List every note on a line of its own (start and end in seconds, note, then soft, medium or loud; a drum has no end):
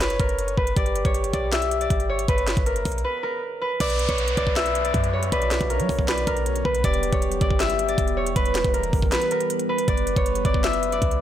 0.00 0.18 F#1 loud
0.00 0.25 B4 medium
0.00 0.83 C#5 medium
0.00 0.36 C#5 medium
0.00 0.21 E5 loud
0.00 snare loud
0.00 closed hi-hat medium
0.10 closed hi-hat medium
0.19 0.56 F#1 loud
0.19 0.63 A#4 medium
0.19 kick medium
0.19 closed hi-hat medium
0.29 closed hi-hat medium
0.39 0.57 C#5 medium
0.39 closed hi-hat medium
0.48 closed hi-hat medium
0.57 0.76 F#1 loud
0.57 2.28 B4 medium
0.57 0.76 B4 medium
0.57 kick medium
0.67 closed hi-hat medium
0.77 1.04 G1 loud
0.77 2.25 G4 loud
0.77 1.11 D5 medium
0.77 kick loud
0.77 closed hi-hat medium
0.86 closed hi-hat medium
0.96 closed hi-hat medium
1.05 1.32 G1 loud
1.05 1.39 C#5 medium
1.05 kick loud
1.05 closed hi-hat medium
1.14 closed hi-hat medium
1.24 closed hi-hat medium
1.33 1.88 B1 loud
1.33 1.81 D5 medium
1.33 kick medium
1.33 closed hi-hat medium
1.52 3.25 E5 medium
1.52 snare loud
1.52 closed hi-hat medium
1.62 closed hi-hat medium
1.71 closed hi-hat medium
1.81 2.15 D5 medium
1.81 closed hi-hat medium
1.90 2.27 G1 loud
1.90 kick loud
1.90 closed hi-hat medium
2.00 closed hi-hat medium
2.09 3.86 C#5 loud
2.19 closed hi-hat medium
2.28 2.56 G1 loud
2.28 2.64 B4 loud
2.28 2.72 B4 loud
2.28 kick loud
2.28 closed hi-hat medium
2.38 closed hi-hat medium
2.47 snare loud
2.47 closed hi-hat medium
2.57 2.84 G1 loud
2.57 kick loud
2.57 closed hi-hat medium
2.66 3.02 A#4 medium
2.66 3.10 A#4 medium
2.66 closed hi-hat medium
2.76 closed hi-hat medium
2.85 3.04 B1 loud
2.85 kick medium
2.85 closed hi-hat medium
2.85 open hi-hat medium
2.92 closed hi-hat soft
2.98 closed hi-hat medium
3.04 3.29 B4 medium
3.04 3.40 B4 loud
3.23 3.67 A#4 medium
3.61 5.32 B4 medium
3.80 4.08 B1 loud
3.80 6.81 D3 medium
3.80 6.81 F#3 medium
3.80 11.21 B3 medium
3.80 6.81 F#4 medium
3.80 5.28 B4 loud
3.80 4.15 D5 loud
3.80 kick loud
3.80 closed hi-hat medium
3.80 crash loud
3.80 downlifter medium
3.90 closed hi-hat medium
3.99 closed hi-hat medium
4.09 4.36 B1 loud
4.09 4.43 C#5 medium
4.09 kick loud
4.09 closed hi-hat medium
4.18 closed hi-hat medium
4.28 closed hi-hat medium
4.37 4.92 B1 loud
4.37 4.84 D5 medium
4.37 kick medium
4.37 closed hi-hat medium
4.47 kick loud
4.56 6.28 E5 medium
4.56 snare loud
4.56 closed hi-hat medium
4.66 closed hi-hat medium
4.75 closed hi-hat medium
4.85 5.19 D5 medium
4.85 closed hi-hat medium
4.94 5.31 F#2 loud
4.94 kick loud
4.94 closed hi-hat medium
5.04 closed hi-hat medium
5.13 6.90 C#5 medium
5.23 closed hi-hat medium
5.32 5.60 B1 loud
5.32 5.76 B4 loud
5.32 5.68 D5 loud
5.32 kick loud
5.32 closed hi-hat medium
5.42 closed hi-hat medium
5.51 snare loud
5.51 closed hi-hat medium
5.61 5.81 B1 loud
5.61 kick loud
5.61 closed hi-hat medium
5.70 6.14 A#4 medium
5.70 6.06 C#5 medium
5.70 closed hi-hat medium
5.80 5.89 F#3 loud
5.80 closed hi-hat medium
5.89 6.26 B1 loud
5.89 kick medium
5.89 open hi-hat medium
5.99 kick loud
6.08 6.33 B4 medium
6.08 6.44 D5 medium
6.08 snare loud
6.08 closed hi-hat medium
6.18 closed hi-hat medium
6.27 6.64 B1 loud
6.27 6.71 A#4 medium
6.27 kick medium
6.27 closed hi-hat medium
6.37 closed hi-hat medium
6.46 6.64 C#5 medium
6.46 closed hi-hat medium
6.56 closed hi-hat medium
6.65 6.83 B1 loud
6.65 8.36 B4 medium
6.65 6.83 B4 medium
6.65 kick medium
6.75 closed hi-hat medium
6.84 7.11 E1 loud
6.84 9.85 E3 medium
6.84 9.85 G3 medium
6.84 9.85 G4 medium
6.84 8.32 G4 loud
6.84 7.19 D5 loud
6.84 kick loud
6.84 closed hi-hat medium
6.94 closed hi-hat medium
7.03 closed hi-hat medium
7.13 7.40 E1 loud
7.13 7.47 C#5 medium
7.13 kick loud
7.13 closed hi-hat medium
7.22 closed hi-hat medium
7.32 closed hi-hat medium
7.41 7.96 G1 loud
7.41 7.88 D5 medium
7.41 kick medium
7.41 closed hi-hat medium
7.51 kick loud
7.60 9.32 E5 medium
7.60 snare loud
7.60 closed hi-hat medium
7.70 closed hi-hat medium
7.79 closed hi-hat medium
7.89 8.23 D5 medium
7.89 closed hi-hat medium
7.98 8.34 E1 loud
7.98 kick loud
7.98 closed hi-hat medium
8.08 closed hi-hat medium
8.17 9.94 C#5 medium
8.27 closed hi-hat medium
8.36 8.63 E1 loud
8.36 8.80 B4 loud
8.36 8.72 B4 loud
8.36 kick loud
8.36 closed hi-hat medium
8.46 closed hi-hat medium
8.55 snare loud
8.55 closed hi-hat medium
8.64 8.92 E1 loud
8.64 kick loud
8.64 closed hi-hat medium
8.74 9.10 A#4 medium
8.74 9.18 A#4 medium
8.74 closed hi-hat medium
8.84 closed hi-hat medium
8.93 9.11 G1 loud
8.93 kick medium
8.93 open hi-hat medium
9.02 kick loud
9.12 9.37 B4 medium
9.12 9.48 B4 loud
9.12 snare loud
9.12 closed hi-hat medium
9.22 closed hi-hat medium
9.31 9.75 A#4 medium
9.31 closed hi-hat medium
9.41 closed hi-hat medium
9.50 closed hi-hat medium
9.60 closed hi-hat medium
9.69 11.21 B4 medium
9.78 closed hi-hat medium
9.88 10.15 F#1 loud
9.88 11.21 C#3 medium
9.88 11.21 F#3 medium
9.88 11.21 F#4 medium
9.88 11.21 B4 loud
9.88 10.22 D5 loud
9.88 kick loud
9.88 closed hi-hat medium
9.97 closed hi-hat medium
10.07 closed hi-hat medium
10.16 10.44 F#1 loud
10.16 10.51 C#5 medium
10.16 kick loud
10.16 closed hi-hat medium
10.26 closed hi-hat medium
10.35 closed hi-hat medium
10.45 11.00 F#1 loud
10.45 10.92 D5 medium
10.45 kick medium
10.45 closed hi-hat medium
10.54 kick loud
10.64 11.21 E5 loud
10.64 snare loud
10.64 closed hi-hat medium
10.73 closed hi-hat medium
10.83 closed hi-hat medium
10.92 11.21 D5 medium
10.92 closed hi-hat medium
11.02 11.21 C#2 loud
11.02 kick loud
11.02 closed hi-hat medium
11.11 closed hi-hat medium